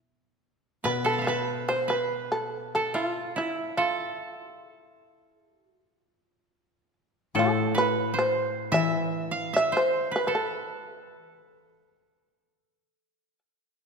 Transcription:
0.84 koto B2 B4, shamisen B4
1.04 koto A4 C6, shamisen A4
1.09 koto A5 B5
1.18 koto E5 F5
1.24 shamisen B4, koto B4 C5
1.68 koto C5, shamisen C5
1.88 koto B4, shamisen B4
2.32 shamisen A4
2.75 shamisen A4, koto A4
2.94 koto F4, shamisen F4
3.36 koto E4, shamisen E4
3.77 shamisen F4, koto A4
4.24 shamisen F#4
4.43 shamisen G4
4.61 shamisen G#4
4.79 shamisen A4
5.30 koto G#4
5.50 koto G4
5.70 koto F#4
5.90 koto F4
7.35 koto A2 A4
7.39 shamisen A4
7.75 koto B4, shamisen B4
8.14 koto C5
8.19 shamisen C5
8.72 koto E3 E5, shamisen E5
9.31 koto F5
9.53 koto E5, shamisen E5
9.72 koto C5
9.77 shamisen C5
10.11 koto B4
10.16 shamisen B4
10.27 koto A4, shamisen B4
10.35 shamisen A4

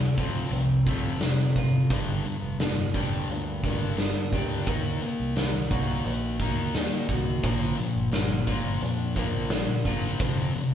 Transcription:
Already playing: fingered electric bass D2, distorted electric guitar F2 C3, clean electric guitar F2 A3
0.17 fingered electric bass D2, distorted electric guitar F2 C3 F3, clean electric guitar F4, kick, closed hi-hat
0.51 fingered electric bass C2, distorted electric guitar F2 C3, clean electric guitar C4, closed hi-hat
0.86 distorted electric guitar F2 C3 F3, clean electric guitar A3, kick, closed hi-hat
1.04 fingered electric bass F1
1.21 distorted electric guitar F2 C3, clean electric guitar C4, snare, closed hi-hat
1.55 fingered electric bass F1, distorted electric guitar F2 C3, clean electric guitar F4, kick, closed hi-hat
1.90 fingered electric bass G1, distorted electric guitar G2 D3 G3, clean electric guitar G2, kick, closed hi-hat
2.25 distorted electric guitar G2 D3, closed hi-hat
2.42 fingered electric bass F1
2.60 distorted electric guitar G2 D3, clean electric guitar A#3, snare, closed hi-hat
2.94 fingered electric bass F1, distorted electric guitar G2 D3 G3, clean electric guitar G4, kick, closed hi-hat
3.28 fingered electric bass D2, distorted electric guitar G2 D3, clean electric guitar D4, closed hi-hat
3.64 distorted electric guitar G2 D3 G3, clean electric guitar A#3, kick, closed hi-hat
3.80 fingered electric bass G1
3.98 distorted electric guitar G2 D3, clean electric guitar D4, snare, closed hi-hat
4.32 fingered electric bass D2, distorted electric guitar G2 D3 G3, clean electric guitar G4, kick, closed hi-hat
4.67 fingered electric bass D#2, distorted electric guitar D#3 A#3 D#4, clean electric guitar D#3, kick, closed hi-hat
5.02 distorted electric guitar D#3 A#3, closed hi-hat
5.20 fingered electric bass C2
5.36 distorted electric guitar D#3 A#3, clean electric guitar A#3, snare, closed hi-hat
5.70 fingered electric bass C2, distorted electric guitar D#3 A#3 D#4, clean electric guitar F#4, kick, closed hi-hat
6.05 fingered electric bass A#1, distorted electric guitar D#3 A#3, clean electric guitar D#4, closed hi-hat
6.39 distorted electric guitar D#3 A#3 D#4, clean electric guitar A#3, kick, closed hi-hat
6.57 fingered electric bass D#2
6.75 distorted electric guitar D#3 A#3, clean electric guitar D#4, snare, closed hi-hat
7.08 fingered electric bass C2, distorted electric guitar D#3 A#3, clean electric guitar F#4, kick, closed hi-hat
7.43 fingered electric bass A#1, distorted electric guitar A#2 F3 A#3, clean electric guitar A#2, kick, closed hi-hat
7.77 distorted electric guitar A#2 F3, closed hi-hat
7.96 fingered electric bass G1
8.12 distorted electric guitar A#2 F3, clean electric guitar A#3, snare, closed hi-hat
8.47 fingered electric bass G1, distorted electric guitar A#2 F3 A#3, clean electric guitar F4, kick, closed hi-hat
8.81 fingered electric bass F2, distorted electric guitar A#2 F3, clean electric guitar D4, closed hi-hat
9.15 distorted electric guitar A#2 F3 A#3, clean electric guitar A#3, kick, closed hi-hat
9.35 fingered electric bass A#1
9.50 distorted electric guitar A#2 F3, clean electric guitar D4, snare, closed hi-hat
9.84 fingered electric bass F#1, distorted electric guitar A#2 F3 A#3, clean electric guitar F4, kick, closed hi-hat
10.19 fingered electric bass F1, distorted electric guitar F2 C3 F3, clean electric guitar F2, kick, closed hi-hat
10.54 distorted electric guitar F2 C3, closed hi-hat

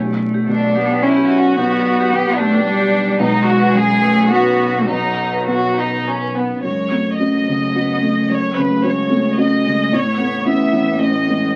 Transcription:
Already playing: felt piano B1, double bass B1, cello A3
0.06 vibraphone D5
0.21 vibraphone D5
0.34 vibraphone G4
0.48 felt piano B2, violin section D4
0.75 cello B3, vibraphone G4
0.90 vibraphone G5
1.03 cello C#4, violin section E4
1.17 vibraphone G4
1.29 violin section F#4, vibraphone D5
1.57 felt piano B1, cello B3, vibraphone G4
1.71 vibraphone D5
1.86 vibraphone D5
2.00 vibraphone G4
2.12 felt piano B3, violin section G4
2.39 cello A3, violin section D4, vibraphone G4
2.54 vibraphone G5
2.66 cello G3
2.80 vibraphone G4
2.93 vibraphone D5
3.19 felt piano B1, double bass B1, cello G#3, violin section D#4, vibraphone B4
3.34 vibraphone F#5
3.46 violin section F#4, vibraphone F#5
3.60 vibraphone B4
3.74 felt piano F#2, violin section G#4
4.01 cello A3, vibraphone B4
4.16 vibraphone B5
4.31 cello B3, violin section F#4
4.44 vibraphone B4
4.59 vibraphone F#5
4.88 felt piano B1, cello F#3, violin section D#4, vibraphone B4
5.03 vibraphone F#5
5.18 vibraphone F#5
5.33 vibraphone B4
5.47 felt piano B3, violin section F#4
5.77 violin section D#4, vibraphone B4
5.92 vibraphone B5
6.07 violin section C#4
6.22 vibraphone B4
6.35 violin section B3, vibraphone F#5
6.64 double bass F#1, felt piano F#2, cello G#3, violin section C#5
6.91 cello F#3, felt piano A3
7.19 felt piano C#4 F#4, violin section D#5
7.48 felt piano C#3
7.75 cello B3, felt piano C#4 F#4
8.02 cello A3, felt piano A3
8.30 felt piano F#2, violin section C#5
8.57 felt piano C#3, violin section B4
8.83 cello G#3, felt piano C#4 F#4, violin section C#5
9.10 felt piano A3
9.37 cello F#3, felt piano C#4 F#4, violin section D#5
9.64 felt piano C#3, cello G#3
9.91 double bass A1, felt piano A2, cello A3, violin section C#5
10.17 felt piano A3, cello B3
10.45 cello B3, felt piano C#4 E4, violin section E5
10.73 felt piano E3
10.99 cello A3, felt piano C#4 E4, violin section D#5
11.28 cello G#3, felt piano A3

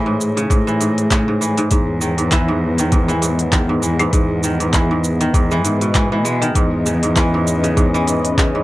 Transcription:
Already playing: cello A2, kora E3, analog synth pad G#4 C#5
0.06 kora G#2
0.21 shaker
0.37 kora C#3, open hi-hat, shaker
0.50 kora G#2, cello A2, kick, open hi-hat, shaker
0.67 kora E3, shaker
0.80 kora G#2, open hi-hat, shaker
0.98 open hi-hat, shaker
1.10 kora C#3, kick, clap, open hi-hat, shaker
1.28 kora G#2
1.41 kora E3, shaker
1.58 kora G#2, open hi-hat, shaker
1.71 cello E2, kora G#2, kick, open hi-hat, shaker
1.92 analog synth pad B3
2.01 kora D#3, shaker
2.18 kora G#2, open hi-hat, shaker
2.32 kora E3, kick, clap, open hi-hat, shaker
2.48 kora G#2
2.78 kora D#3, open hi-hat, shaker
2.87 analog synth pad D#5
2.92 kora G#2, kick, open hi-hat, shaker
3.08 kora E3, shaker
3.22 kora G#2, open hi-hat, shaker
3.39 open hi-hat, shaker
3.52 kora D#3, kick, clap, open hi-hat, shaker
3.69 kora G#2
3.82 cello E2, kora E3, shaker
3.99 kora G#2, open hi-hat, claves, shaker
4.13 cello E2, kora G#2, kick, open hi-hat, shaker
4.43 kora D#3, shaker
4.60 kora G#2, open hi-hat, shaker
4.73 kora E3, kick, clap, open hi-hat, shaker
4.91 kora G#2
5.04 shaker
5.21 kora D#3, open hi-hat, shaker
5.34 cello E2, kora G#2, kick, open hi-hat, shaker
5.51 kora E3, shaker
5.65 cello G#2, kora G#2, open hi-hat, shaker
5.81 kora B2, open hi-hat, shaker
5.94 kora E3, kick, clap, open hi-hat, shaker
6.12 kora E3
6.25 cello B2, kora G#3, open hi-hat, shaker
6.42 kora D#3, open hi-hat, shaker
6.55 cello E2, kora G#2, kick, open hi-hat, shaker
6.86 kora C#3, shaker
7.03 kora G#2, open hi-hat, shaker
7.10 analog synth pad B4
7.16 kora E3, analog synth pad C#4, kick, clap, open hi-hat, shaker
7.34 kora G#2
7.47 shaker
7.64 kora C#3, open hi-hat, shaker
7.77 kora G#2, kick, open hi-hat, shaker
7.94 kora E3, shaker
8.07 kora G#2, open hi-hat, shaker
8.25 open hi-hat, shaker
8.38 kora C#3, kick, clap, open hi-hat, shaker
8.55 kora G#2

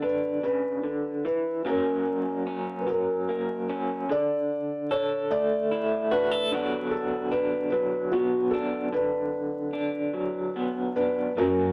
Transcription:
Already playing: clean electric guitar D3 F#3, felt piano D4
0.02 clean electric guitar D4, felt piano B4
0.43 clean electric guitar C#3, felt piano B4
0.84 clean electric guitar D3
1.25 clean electric guitar E3, felt piano B4
1.65 clean electric guitar F#2 F#3 A#3 C#4, felt piano A#4
1.70 felt piano C#4
2.47 clean electric guitar C#4
2.81 felt piano B4
2.87 clean electric guitar F#3, felt piano A#4
3.29 clean electric guitar A#3
3.69 clean electric guitar C#4
4.09 clean electric guitar D3, felt piano A4 D5
4.91 clean electric guitar A4, felt piano C#5
5.31 clean electric guitar A3, felt piano D5
5.71 clean electric guitar E4
6.11 felt piano D4 B4, clean electric guitar F#4
6.31 clean electric guitar A4
6.52 clean electric guitar D3 F#3 B3 D4 F#4
6.91 felt piano A4
7.31 clean electric guitar D4, felt piano B4
7.70 clean electric guitar F#3, felt piano B4
8.12 clean electric guitar B3, felt piano F#4
8.51 clean electric guitar D4, felt piano A4
8.93 clean electric guitar D3, felt piano D4 B4
9.73 clean electric guitar D4
10.13 clean electric guitar F#3
10.56 clean electric guitar B3
10.96 clean electric guitar D4, felt piano B4
11.36 cello F#2, clean electric guitar F#2 F#3 A#3 C#4, felt piano C#4 F#4 A#4

